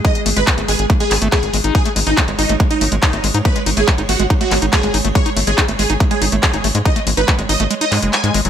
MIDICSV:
0, 0, Header, 1, 6, 480
1, 0, Start_track
1, 0, Tempo, 425532
1, 52, Time_signature, 4, 2, 24, 8
1, 9586, End_track
2, 0, Start_track
2, 0, Title_t, "Ambient pad"
2, 0, Program_c, 0, 92
2, 0, Note_on_c, 0, 56, 79
2, 0, Note_on_c, 0, 68, 77
2, 1972, Note_on_c, 0, 73, 78
2, 1996, Note_off_c, 0, 68, 0
2, 9586, Note_off_c, 0, 56, 0
2, 9586, Note_off_c, 0, 73, 0
2, 9586, End_track
3, 0, Start_track
3, 0, Title_t, "Supersaw synth"
3, 0, Program_c, 1, 81
3, 52, Note_on_c, 1, 75, 100
3, 240, Note_off_c, 1, 75, 0
3, 412, Note_on_c, 1, 71, 99
3, 601, Note_off_c, 1, 71, 0
3, 772, Note_on_c, 1, 68, 96
3, 961, Note_off_c, 1, 68, 0
3, 1132, Note_on_c, 1, 68, 98
3, 1321, Note_off_c, 1, 68, 0
3, 1492, Note_on_c, 1, 68, 95
3, 1743, Note_off_c, 1, 68, 0
3, 1972, Note_on_c, 1, 68, 100
3, 2161, Note_off_c, 1, 68, 0
3, 2332, Note_on_c, 1, 63, 97
3, 2521, Note_off_c, 1, 63, 0
3, 2692, Note_on_c, 1, 63, 98
3, 2881, Note_off_c, 1, 63, 0
3, 3052, Note_on_c, 1, 63, 96
3, 3241, Note_off_c, 1, 63, 0
3, 3412, Note_on_c, 1, 63, 96
3, 3664, Note_off_c, 1, 63, 0
3, 3892, Note_on_c, 1, 71, 103
3, 4081, Note_off_c, 1, 71, 0
3, 4252, Note_on_c, 1, 68, 98
3, 4441, Note_off_c, 1, 68, 0
3, 4613, Note_on_c, 1, 66, 98
3, 4801, Note_off_c, 1, 66, 0
3, 4972, Note_on_c, 1, 66, 98
3, 5161, Note_off_c, 1, 66, 0
3, 5333, Note_on_c, 1, 68, 99
3, 5584, Note_off_c, 1, 68, 0
3, 5812, Note_on_c, 1, 73, 103
3, 6001, Note_off_c, 1, 73, 0
3, 6173, Note_on_c, 1, 68, 99
3, 6361, Note_off_c, 1, 68, 0
3, 6532, Note_on_c, 1, 68, 98
3, 6721, Note_off_c, 1, 68, 0
3, 6892, Note_on_c, 1, 68, 97
3, 7081, Note_off_c, 1, 68, 0
3, 7252, Note_on_c, 1, 68, 94
3, 7504, Note_off_c, 1, 68, 0
3, 7732, Note_on_c, 1, 75, 103
3, 7921, Note_off_c, 1, 75, 0
3, 8092, Note_on_c, 1, 71, 98
3, 8281, Note_off_c, 1, 71, 0
3, 8452, Note_on_c, 1, 75, 100
3, 8641, Note_off_c, 1, 75, 0
3, 8812, Note_on_c, 1, 75, 99
3, 9001, Note_off_c, 1, 75, 0
3, 9172, Note_on_c, 1, 80, 93
3, 9424, Note_off_c, 1, 80, 0
3, 9586, End_track
4, 0, Start_track
4, 0, Title_t, "Acid bass"
4, 0, Program_c, 2, 38
4, 52, Note_on_c, 2, 56, 83
4, 96, Note_off_c, 2, 56, 0
4, 292, Note_on_c, 2, 57, 77
4, 336, Note_off_c, 2, 57, 0
4, 412, Note_on_c, 2, 56, 79
4, 456, Note_off_c, 2, 56, 0
4, 652, Note_on_c, 2, 57, 76
4, 696, Note_off_c, 2, 57, 0
4, 772, Note_on_c, 2, 56, 77
4, 816, Note_off_c, 2, 56, 0
4, 1012, Note_on_c, 2, 57, 86
4, 1056, Note_off_c, 2, 57, 0
4, 1132, Note_on_c, 2, 56, 74
4, 1176, Note_off_c, 2, 56, 0
4, 1372, Note_on_c, 2, 57, 98
4, 1445, Note_off_c, 2, 57, 0
4, 1492, Note_on_c, 2, 57, 104
4, 1565, Note_off_c, 2, 57, 0
4, 1732, Note_on_c, 2, 56, 79
4, 1776, Note_off_c, 2, 56, 0
4, 1852, Note_on_c, 2, 63, 80
4, 1961, Note_off_c, 2, 63, 0
4, 2092, Note_on_c, 2, 57, 79
4, 2136, Note_off_c, 2, 57, 0
4, 2212, Note_on_c, 2, 56, 78
4, 2256, Note_off_c, 2, 56, 0
4, 2332, Note_on_c, 2, 63, 106
4, 2376, Note_off_c, 2, 63, 0
4, 2452, Note_on_c, 2, 57, 83
4, 2496, Note_off_c, 2, 57, 0
4, 2573, Note_on_c, 2, 56, 78
4, 2616, Note_off_c, 2, 56, 0
4, 2693, Note_on_c, 2, 63, 104
4, 2736, Note_off_c, 2, 63, 0
4, 2813, Note_on_c, 2, 57, 81
4, 2856, Note_off_c, 2, 57, 0
4, 2932, Note_on_c, 2, 56, 86
4, 2976, Note_off_c, 2, 56, 0
4, 3052, Note_on_c, 2, 63, 101
4, 3096, Note_off_c, 2, 63, 0
4, 3173, Note_on_c, 2, 57, 77
4, 3216, Note_off_c, 2, 57, 0
4, 3293, Note_on_c, 2, 56, 76
4, 3336, Note_off_c, 2, 56, 0
4, 3413, Note_on_c, 2, 63, 105
4, 3456, Note_off_c, 2, 63, 0
4, 3532, Note_on_c, 2, 57, 78
4, 3576, Note_off_c, 2, 57, 0
4, 3652, Note_on_c, 2, 56, 77
4, 3696, Note_off_c, 2, 56, 0
4, 3773, Note_on_c, 2, 63, 103
4, 3816, Note_off_c, 2, 63, 0
4, 3893, Note_on_c, 2, 57, 85
4, 3936, Note_off_c, 2, 57, 0
4, 4013, Note_on_c, 2, 56, 76
4, 4056, Note_off_c, 2, 56, 0
4, 4133, Note_on_c, 2, 63, 99
4, 4176, Note_off_c, 2, 63, 0
4, 4253, Note_on_c, 2, 57, 79
4, 4296, Note_off_c, 2, 57, 0
4, 4372, Note_on_c, 2, 56, 85
4, 4416, Note_off_c, 2, 56, 0
4, 4492, Note_on_c, 2, 63, 101
4, 4536, Note_off_c, 2, 63, 0
4, 4612, Note_on_c, 2, 57, 78
4, 4656, Note_off_c, 2, 57, 0
4, 4732, Note_on_c, 2, 56, 80
4, 4776, Note_off_c, 2, 56, 0
4, 4852, Note_on_c, 2, 63, 105
4, 4896, Note_off_c, 2, 63, 0
4, 4972, Note_on_c, 2, 57, 74
4, 5016, Note_off_c, 2, 57, 0
4, 5092, Note_on_c, 2, 56, 79
4, 5136, Note_off_c, 2, 56, 0
4, 5212, Note_on_c, 2, 63, 102
4, 5256, Note_off_c, 2, 63, 0
4, 5332, Note_on_c, 2, 57, 86
4, 5376, Note_off_c, 2, 57, 0
4, 5452, Note_on_c, 2, 56, 81
4, 5496, Note_off_c, 2, 56, 0
4, 5572, Note_on_c, 2, 63, 103
4, 5616, Note_off_c, 2, 63, 0
4, 5692, Note_on_c, 2, 57, 79
4, 5736, Note_off_c, 2, 57, 0
4, 5812, Note_on_c, 2, 56, 86
4, 5856, Note_off_c, 2, 56, 0
4, 5932, Note_on_c, 2, 63, 104
4, 5976, Note_off_c, 2, 63, 0
4, 6052, Note_on_c, 2, 57, 76
4, 6096, Note_off_c, 2, 57, 0
4, 6172, Note_on_c, 2, 56, 76
4, 6216, Note_off_c, 2, 56, 0
4, 6292, Note_on_c, 2, 63, 103
4, 6336, Note_off_c, 2, 63, 0
4, 6412, Note_on_c, 2, 57, 78
4, 6456, Note_off_c, 2, 57, 0
4, 6532, Note_on_c, 2, 56, 78
4, 6576, Note_off_c, 2, 56, 0
4, 6651, Note_on_c, 2, 63, 107
4, 6695, Note_off_c, 2, 63, 0
4, 6772, Note_on_c, 2, 57, 85
4, 6816, Note_off_c, 2, 57, 0
4, 6892, Note_on_c, 2, 56, 78
4, 6936, Note_off_c, 2, 56, 0
4, 7012, Note_on_c, 2, 63, 103
4, 7056, Note_off_c, 2, 63, 0
4, 7132, Note_on_c, 2, 57, 76
4, 7176, Note_off_c, 2, 57, 0
4, 7252, Note_on_c, 2, 56, 84
4, 7296, Note_off_c, 2, 56, 0
4, 7372, Note_on_c, 2, 63, 102
4, 7416, Note_off_c, 2, 63, 0
4, 7492, Note_on_c, 2, 57, 78
4, 7536, Note_off_c, 2, 57, 0
4, 7612, Note_on_c, 2, 56, 77
4, 7656, Note_off_c, 2, 56, 0
4, 7732, Note_on_c, 2, 63, 105
4, 7776, Note_off_c, 2, 63, 0
4, 7851, Note_on_c, 2, 57, 80
4, 7895, Note_off_c, 2, 57, 0
4, 7972, Note_on_c, 2, 56, 76
4, 8016, Note_off_c, 2, 56, 0
4, 8091, Note_on_c, 2, 63, 102
4, 8135, Note_off_c, 2, 63, 0
4, 8211, Note_on_c, 2, 57, 84
4, 8255, Note_off_c, 2, 57, 0
4, 8331, Note_on_c, 2, 56, 76
4, 8375, Note_off_c, 2, 56, 0
4, 8451, Note_on_c, 2, 63, 103
4, 8495, Note_off_c, 2, 63, 0
4, 8572, Note_on_c, 2, 57, 81
4, 8616, Note_off_c, 2, 57, 0
4, 8692, Note_on_c, 2, 56, 85
4, 8736, Note_off_c, 2, 56, 0
4, 8812, Note_on_c, 2, 63, 102
4, 8856, Note_off_c, 2, 63, 0
4, 8932, Note_on_c, 2, 56, 76
4, 9041, Note_off_c, 2, 56, 0
4, 9052, Note_on_c, 2, 56, 75
4, 9161, Note_off_c, 2, 56, 0
4, 9292, Note_on_c, 2, 56, 78
4, 9401, Note_off_c, 2, 56, 0
4, 9412, Note_on_c, 2, 56, 105
4, 9485, Note_off_c, 2, 56, 0
4, 9532, Note_on_c, 2, 54, 80
4, 9586, Note_off_c, 2, 54, 0
4, 9586, End_track
5, 0, Start_track
5, 0, Title_t, "Analog synth bass"
5, 0, Program_c, 3, 38
5, 292, Note_on_c, 3, 32, 95
5, 373, Note_off_c, 3, 32, 0
5, 412, Note_on_c, 3, 32, 84
5, 493, Note_off_c, 3, 32, 0
5, 652, Note_on_c, 3, 32, 78
5, 733, Note_off_c, 3, 32, 0
5, 772, Note_on_c, 3, 32, 92
5, 853, Note_off_c, 3, 32, 0
5, 892, Note_on_c, 3, 32, 81
5, 973, Note_off_c, 3, 32, 0
5, 1252, Note_on_c, 3, 32, 95
5, 1333, Note_off_c, 3, 32, 0
5, 1372, Note_on_c, 3, 32, 82
5, 1453, Note_off_c, 3, 32, 0
5, 1612, Note_on_c, 3, 32, 77
5, 1693, Note_off_c, 3, 32, 0
5, 1732, Note_on_c, 3, 32, 92
5, 1813, Note_off_c, 3, 32, 0
5, 1852, Note_on_c, 3, 32, 81
5, 1933, Note_off_c, 3, 32, 0
5, 2212, Note_on_c, 3, 32, 94
5, 2293, Note_off_c, 3, 32, 0
5, 2332, Note_on_c, 3, 32, 85
5, 2413, Note_off_c, 3, 32, 0
5, 2572, Note_on_c, 3, 32, 78
5, 2653, Note_off_c, 3, 32, 0
5, 2692, Note_on_c, 3, 32, 92
5, 2773, Note_off_c, 3, 32, 0
5, 2812, Note_on_c, 3, 32, 82
5, 2893, Note_off_c, 3, 32, 0
5, 3172, Note_on_c, 3, 32, 93
5, 3253, Note_off_c, 3, 32, 0
5, 3292, Note_on_c, 3, 32, 83
5, 3373, Note_off_c, 3, 32, 0
5, 3532, Note_on_c, 3, 32, 78
5, 3613, Note_off_c, 3, 32, 0
5, 3652, Note_on_c, 3, 32, 94
5, 3733, Note_off_c, 3, 32, 0
5, 3772, Note_on_c, 3, 44, 82
5, 3853, Note_off_c, 3, 44, 0
5, 4132, Note_on_c, 3, 32, 94
5, 4213, Note_off_c, 3, 32, 0
5, 4252, Note_on_c, 3, 32, 84
5, 4333, Note_off_c, 3, 32, 0
5, 4493, Note_on_c, 3, 32, 78
5, 4573, Note_off_c, 3, 32, 0
5, 4612, Note_on_c, 3, 32, 94
5, 4693, Note_off_c, 3, 32, 0
5, 4732, Note_on_c, 3, 32, 82
5, 4813, Note_off_c, 3, 32, 0
5, 5092, Note_on_c, 3, 32, 99
5, 5173, Note_off_c, 3, 32, 0
5, 5212, Note_on_c, 3, 32, 82
5, 5293, Note_off_c, 3, 32, 0
5, 5453, Note_on_c, 3, 32, 81
5, 5533, Note_off_c, 3, 32, 0
5, 5572, Note_on_c, 3, 32, 95
5, 5653, Note_off_c, 3, 32, 0
5, 5692, Note_on_c, 3, 32, 83
5, 5773, Note_off_c, 3, 32, 0
5, 6052, Note_on_c, 3, 32, 93
5, 6133, Note_off_c, 3, 32, 0
5, 6172, Note_on_c, 3, 32, 82
5, 6253, Note_off_c, 3, 32, 0
5, 6412, Note_on_c, 3, 32, 79
5, 6493, Note_off_c, 3, 32, 0
5, 6532, Note_on_c, 3, 32, 92
5, 6613, Note_off_c, 3, 32, 0
5, 6652, Note_on_c, 3, 32, 79
5, 6733, Note_off_c, 3, 32, 0
5, 7012, Note_on_c, 3, 32, 95
5, 7093, Note_off_c, 3, 32, 0
5, 7133, Note_on_c, 3, 32, 83
5, 7213, Note_off_c, 3, 32, 0
5, 7372, Note_on_c, 3, 32, 77
5, 7453, Note_off_c, 3, 32, 0
5, 7492, Note_on_c, 3, 32, 95
5, 7573, Note_off_c, 3, 32, 0
5, 7612, Note_on_c, 3, 44, 85
5, 7693, Note_off_c, 3, 44, 0
5, 7972, Note_on_c, 3, 32, 96
5, 8053, Note_off_c, 3, 32, 0
5, 8092, Note_on_c, 3, 32, 85
5, 8173, Note_off_c, 3, 32, 0
5, 8332, Note_on_c, 3, 32, 80
5, 8413, Note_off_c, 3, 32, 0
5, 8452, Note_on_c, 3, 32, 94
5, 8533, Note_off_c, 3, 32, 0
5, 8572, Note_on_c, 3, 32, 82
5, 8653, Note_off_c, 3, 32, 0
5, 8932, Note_on_c, 3, 44, 95
5, 9013, Note_off_c, 3, 44, 0
5, 9052, Note_on_c, 3, 30, 85
5, 9133, Note_off_c, 3, 30, 0
5, 9292, Note_on_c, 3, 44, 79
5, 9373, Note_off_c, 3, 44, 0
5, 9412, Note_on_c, 3, 32, 94
5, 9493, Note_off_c, 3, 32, 0
5, 9532, Note_on_c, 3, 30, 84
5, 9586, Note_off_c, 3, 30, 0
5, 9586, End_track
6, 0, Start_track
6, 0, Title_t, "Drums"
6, 52, Note_on_c, 9, 36, 127
6, 52, Note_on_c, 9, 42, 64
6, 165, Note_off_c, 9, 36, 0
6, 165, Note_off_c, 9, 42, 0
6, 172, Note_on_c, 9, 42, 63
6, 285, Note_off_c, 9, 42, 0
6, 292, Note_on_c, 9, 46, 112
6, 405, Note_off_c, 9, 46, 0
6, 412, Note_on_c, 9, 42, 62
6, 525, Note_off_c, 9, 42, 0
6, 532, Note_on_c, 9, 36, 124
6, 532, Note_on_c, 9, 39, 120
6, 532, Note_on_c, 9, 42, 64
6, 645, Note_off_c, 9, 36, 0
6, 645, Note_off_c, 9, 39, 0
6, 645, Note_off_c, 9, 42, 0
6, 652, Note_on_c, 9, 42, 61
6, 765, Note_off_c, 9, 42, 0
6, 772, Note_on_c, 9, 46, 97
6, 885, Note_off_c, 9, 46, 0
6, 892, Note_on_c, 9, 42, 63
6, 1005, Note_off_c, 9, 42, 0
6, 1012, Note_on_c, 9, 36, 127
6, 1012, Note_on_c, 9, 42, 62
6, 1125, Note_off_c, 9, 36, 0
6, 1125, Note_off_c, 9, 42, 0
6, 1132, Note_on_c, 9, 42, 65
6, 1245, Note_off_c, 9, 42, 0
6, 1252, Note_on_c, 9, 39, 60
6, 1252, Note_on_c, 9, 46, 110
6, 1365, Note_off_c, 9, 39, 0
6, 1365, Note_off_c, 9, 46, 0
6, 1372, Note_on_c, 9, 42, 64
6, 1485, Note_off_c, 9, 42, 0
6, 1492, Note_on_c, 9, 36, 123
6, 1492, Note_on_c, 9, 39, 119
6, 1492, Note_on_c, 9, 42, 64
6, 1605, Note_off_c, 9, 36, 0
6, 1605, Note_off_c, 9, 39, 0
6, 1605, Note_off_c, 9, 42, 0
6, 1612, Note_on_c, 9, 42, 62
6, 1725, Note_off_c, 9, 42, 0
6, 1732, Note_on_c, 9, 46, 99
6, 1845, Note_off_c, 9, 46, 0
6, 1852, Note_on_c, 9, 42, 66
6, 1965, Note_off_c, 9, 42, 0
6, 1972, Note_on_c, 9, 36, 122
6, 1972, Note_on_c, 9, 42, 65
6, 2085, Note_off_c, 9, 36, 0
6, 2085, Note_off_c, 9, 42, 0
6, 2092, Note_on_c, 9, 42, 65
6, 2205, Note_off_c, 9, 42, 0
6, 2212, Note_on_c, 9, 46, 105
6, 2324, Note_off_c, 9, 46, 0
6, 2332, Note_on_c, 9, 42, 63
6, 2445, Note_off_c, 9, 42, 0
6, 2452, Note_on_c, 9, 36, 120
6, 2452, Note_on_c, 9, 39, 119
6, 2452, Note_on_c, 9, 42, 65
6, 2565, Note_off_c, 9, 36, 0
6, 2565, Note_off_c, 9, 39, 0
6, 2565, Note_off_c, 9, 42, 0
6, 2572, Note_on_c, 9, 42, 61
6, 2685, Note_off_c, 9, 42, 0
6, 2692, Note_on_c, 9, 46, 94
6, 2805, Note_off_c, 9, 46, 0
6, 2812, Note_on_c, 9, 42, 64
6, 2925, Note_off_c, 9, 42, 0
6, 2932, Note_on_c, 9, 36, 121
6, 2932, Note_on_c, 9, 42, 66
6, 3045, Note_off_c, 9, 36, 0
6, 3045, Note_off_c, 9, 42, 0
6, 3052, Note_on_c, 9, 42, 64
6, 3165, Note_off_c, 9, 42, 0
6, 3172, Note_on_c, 9, 46, 104
6, 3285, Note_off_c, 9, 46, 0
6, 3292, Note_on_c, 9, 42, 66
6, 3405, Note_off_c, 9, 42, 0
6, 3412, Note_on_c, 9, 36, 124
6, 3413, Note_on_c, 9, 39, 115
6, 3413, Note_on_c, 9, 42, 66
6, 3525, Note_off_c, 9, 36, 0
6, 3525, Note_off_c, 9, 39, 0
6, 3525, Note_off_c, 9, 42, 0
6, 3533, Note_on_c, 9, 42, 64
6, 3645, Note_off_c, 9, 42, 0
6, 3652, Note_on_c, 9, 46, 95
6, 3765, Note_off_c, 9, 46, 0
6, 3772, Note_on_c, 9, 42, 65
6, 3885, Note_off_c, 9, 42, 0
6, 3892, Note_on_c, 9, 36, 118
6, 3893, Note_on_c, 9, 42, 68
6, 4005, Note_off_c, 9, 36, 0
6, 4005, Note_off_c, 9, 42, 0
6, 4013, Note_on_c, 9, 42, 67
6, 4125, Note_off_c, 9, 42, 0
6, 4132, Note_on_c, 9, 46, 103
6, 4245, Note_off_c, 9, 46, 0
6, 4252, Note_on_c, 9, 42, 66
6, 4365, Note_off_c, 9, 42, 0
6, 4372, Note_on_c, 9, 36, 115
6, 4372, Note_on_c, 9, 39, 116
6, 4372, Note_on_c, 9, 42, 68
6, 4485, Note_off_c, 9, 36, 0
6, 4485, Note_off_c, 9, 39, 0
6, 4485, Note_off_c, 9, 42, 0
6, 4492, Note_on_c, 9, 42, 65
6, 4605, Note_off_c, 9, 42, 0
6, 4612, Note_on_c, 9, 46, 91
6, 4725, Note_off_c, 9, 46, 0
6, 4732, Note_on_c, 9, 42, 66
6, 4845, Note_off_c, 9, 42, 0
6, 4852, Note_on_c, 9, 36, 120
6, 4852, Note_on_c, 9, 42, 65
6, 4965, Note_off_c, 9, 36, 0
6, 4965, Note_off_c, 9, 42, 0
6, 4972, Note_on_c, 9, 42, 66
6, 5085, Note_off_c, 9, 42, 0
6, 5092, Note_on_c, 9, 39, 57
6, 5092, Note_on_c, 9, 46, 99
6, 5205, Note_off_c, 9, 39, 0
6, 5205, Note_off_c, 9, 46, 0
6, 5212, Note_on_c, 9, 42, 68
6, 5325, Note_off_c, 9, 42, 0
6, 5332, Note_on_c, 9, 36, 115
6, 5332, Note_on_c, 9, 39, 116
6, 5332, Note_on_c, 9, 42, 66
6, 5445, Note_off_c, 9, 36, 0
6, 5445, Note_off_c, 9, 39, 0
6, 5445, Note_off_c, 9, 42, 0
6, 5452, Note_on_c, 9, 42, 64
6, 5565, Note_off_c, 9, 42, 0
6, 5573, Note_on_c, 9, 46, 91
6, 5685, Note_off_c, 9, 46, 0
6, 5692, Note_on_c, 9, 42, 68
6, 5805, Note_off_c, 9, 42, 0
6, 5812, Note_on_c, 9, 36, 117
6, 5812, Note_on_c, 9, 42, 71
6, 5925, Note_off_c, 9, 36, 0
6, 5925, Note_off_c, 9, 42, 0
6, 5932, Note_on_c, 9, 42, 69
6, 6045, Note_off_c, 9, 42, 0
6, 6052, Note_on_c, 9, 46, 100
6, 6165, Note_off_c, 9, 46, 0
6, 6172, Note_on_c, 9, 42, 69
6, 6285, Note_off_c, 9, 42, 0
6, 6292, Note_on_c, 9, 36, 112
6, 6292, Note_on_c, 9, 39, 120
6, 6292, Note_on_c, 9, 42, 70
6, 6405, Note_off_c, 9, 36, 0
6, 6405, Note_off_c, 9, 39, 0
6, 6405, Note_off_c, 9, 42, 0
6, 6412, Note_on_c, 9, 42, 68
6, 6525, Note_off_c, 9, 42, 0
6, 6532, Note_on_c, 9, 46, 90
6, 6645, Note_off_c, 9, 46, 0
6, 6652, Note_on_c, 9, 42, 70
6, 6765, Note_off_c, 9, 42, 0
6, 6772, Note_on_c, 9, 36, 117
6, 6772, Note_on_c, 9, 42, 68
6, 6884, Note_off_c, 9, 42, 0
6, 6885, Note_off_c, 9, 36, 0
6, 6892, Note_on_c, 9, 42, 71
6, 7004, Note_off_c, 9, 42, 0
6, 7012, Note_on_c, 9, 46, 100
6, 7124, Note_off_c, 9, 46, 0
6, 7131, Note_on_c, 9, 42, 67
6, 7244, Note_off_c, 9, 42, 0
6, 7252, Note_on_c, 9, 36, 111
6, 7252, Note_on_c, 9, 39, 122
6, 7252, Note_on_c, 9, 42, 70
6, 7364, Note_off_c, 9, 39, 0
6, 7364, Note_off_c, 9, 42, 0
6, 7365, Note_off_c, 9, 36, 0
6, 7372, Note_on_c, 9, 42, 67
6, 7485, Note_off_c, 9, 42, 0
6, 7492, Note_on_c, 9, 46, 90
6, 7604, Note_off_c, 9, 46, 0
6, 7612, Note_on_c, 9, 42, 69
6, 7725, Note_off_c, 9, 42, 0
6, 7732, Note_on_c, 9, 36, 117
6, 7732, Note_on_c, 9, 42, 72
6, 7845, Note_off_c, 9, 36, 0
6, 7845, Note_off_c, 9, 42, 0
6, 7852, Note_on_c, 9, 42, 71
6, 7965, Note_off_c, 9, 42, 0
6, 7972, Note_on_c, 9, 46, 101
6, 8085, Note_off_c, 9, 46, 0
6, 8092, Note_on_c, 9, 42, 71
6, 8205, Note_off_c, 9, 42, 0
6, 8212, Note_on_c, 9, 36, 119
6, 8212, Note_on_c, 9, 39, 123
6, 8212, Note_on_c, 9, 42, 72
6, 8325, Note_off_c, 9, 36, 0
6, 8325, Note_off_c, 9, 39, 0
6, 8325, Note_off_c, 9, 42, 0
6, 8332, Note_on_c, 9, 42, 67
6, 8445, Note_off_c, 9, 42, 0
6, 8452, Note_on_c, 9, 46, 91
6, 8564, Note_off_c, 9, 46, 0
6, 8572, Note_on_c, 9, 42, 72
6, 8685, Note_off_c, 9, 42, 0
6, 8692, Note_on_c, 9, 42, 72
6, 8805, Note_off_c, 9, 42, 0
6, 8812, Note_on_c, 9, 42, 70
6, 8925, Note_off_c, 9, 42, 0
6, 8932, Note_on_c, 9, 39, 60
6, 8932, Note_on_c, 9, 46, 101
6, 9045, Note_off_c, 9, 39, 0
6, 9045, Note_off_c, 9, 46, 0
6, 9052, Note_on_c, 9, 42, 68
6, 9165, Note_off_c, 9, 42, 0
6, 9172, Note_on_c, 9, 39, 126
6, 9172, Note_on_c, 9, 42, 69
6, 9284, Note_off_c, 9, 39, 0
6, 9284, Note_off_c, 9, 42, 0
6, 9292, Note_on_c, 9, 42, 70
6, 9405, Note_off_c, 9, 42, 0
6, 9412, Note_on_c, 9, 46, 91
6, 9525, Note_off_c, 9, 46, 0
6, 9532, Note_on_c, 9, 42, 70
6, 9586, Note_off_c, 9, 42, 0
6, 9586, End_track
0, 0, End_of_file